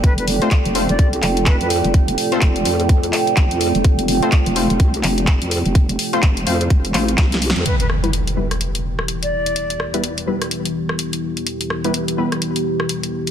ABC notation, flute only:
X:1
M:4/4
L:1/16
Q:"Swing 16ths" 1/4=126
K:Ephr
V:1 name="Flute"
B B z4 z d2 z3 B B z2 | z16 | z16 | z16 |
B B z8 z3 d3- | d3 z12 z | z16 |]